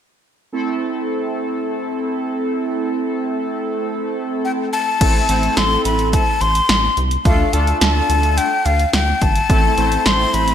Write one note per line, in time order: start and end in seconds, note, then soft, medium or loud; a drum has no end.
0.52 4.69 A3 medium
0.52 4.69 C4 medium
0.52 4.69 E4 medium
0.52 4.69 A4 medium
4.45 4.51 G5 medium
4.73 5.59 A5 loud
5.01 5.21 A1 loud
5.01 5.25 A3 medium
5.01 5.25 C4 medium
5.01 5.25 E4 medium
5.01 5.25 A4 medium
5.01 kick loud
5.01 closed hi-hat medium
5.01 crash medium
5.29 5.49 A1 loud
5.29 6.23 A3 medium
5.29 6.23 C4 medium
5.29 6.23 E4 medium
5.29 6.23 A4 medium
5.29 closed hi-hat medium
5.43 closed hi-hat soft
5.57 5.77 A1 loud
5.57 5.85 C6 loud
5.57 snare loud
5.57 closed hi-hat medium
5.85 6.15 A1 medium
5.85 6.11 B5 medium
5.85 closed hi-hat medium
5.99 closed hi-hat medium
6.13 6.43 A5 loud
6.13 kick medium
6.13 closed hi-hat medium
6.41 6.61 A1 medium
6.41 6.97 C6 loud
6.41 closed hi-hat medium
6.55 closed hi-hat medium
6.69 6.89 A1 loud
6.69 snare loud
6.69 closed hi-hat medium
6.97 7.17 C2 medium
6.97 closed hi-hat medium
7.11 closed hi-hat medium
7.25 7.45 D2 loud
7.25 7.49 A3 medium
7.25 7.49 D4 medium
7.25 7.49 F4 medium
7.25 7.49 A4 medium
7.25 7.55 F5 medium
7.25 kick loud
7.25 closed hi-hat medium
7.53 7.73 D2 loud
7.53 8.48 A3 medium
7.53 8.48 D4 medium
7.53 8.48 F4 medium
7.53 8.48 A4 medium
7.53 7.81 A5 medium
7.53 closed hi-hat medium
7.67 closed hi-hat soft
7.81 8.01 D2 loud
7.81 8.39 A5 loud
7.81 snare loud
7.81 closed hi-hat medium
8.09 8.39 D2 medium
8.09 closed hi-hat medium
8.23 closed hi-hat medium
8.37 8.67 G5 medium
8.37 closed hi-hat medium
8.66 8.85 D2 loud
8.66 8.93 F5 medium
8.66 closed hi-hat medium
8.79 closed hi-hat medium
8.93 9.13 D2 loud
8.93 9.23 G5 loud
8.93 snare loud
8.93 closed hi-hat medium
9.22 9.41 G1 medium
9.22 10.07 A5 loud
9.22 kick medium
9.22 closed hi-hat medium
9.35 closed hi-hat medium
9.50 9.69 A1 loud
9.50 9.73 A3 medium
9.50 9.73 C4 medium
9.50 9.73 E4 medium
9.50 9.73 A4 medium
9.50 kick loud
9.50 closed hi-hat medium
9.78 9.97 A1 loud
9.78 10.54 A3 medium
9.78 10.54 C4 medium
9.78 10.54 E4 medium
9.78 10.54 C5 medium
9.78 closed hi-hat medium
9.92 closed hi-hat medium
10.06 10.25 A1 loud
10.06 10.35 C6 loud
10.06 snare loud
10.06 closed hi-hat medium
10.34 10.54 A1 loud
10.34 10.54 B5 loud
10.34 closed hi-hat medium
10.48 closed hi-hat medium